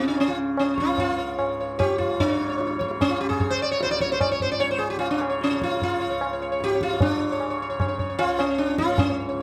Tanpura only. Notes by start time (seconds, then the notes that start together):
Already playing: C#2 G#2 C#3
0.27 C#3
0.83 C#2
1.38 G#2
1.94 C#3
2.20 G#2
2.74 C#3
3.32 C#3
3.85 C#2
4.43 G#2
4.96 C#3
5.51 C#3
6.06 C#2
6.61 G#2
7.16 C#3
7.70 C#3
8.23 C#2
8.78 G#2
9.34 C#3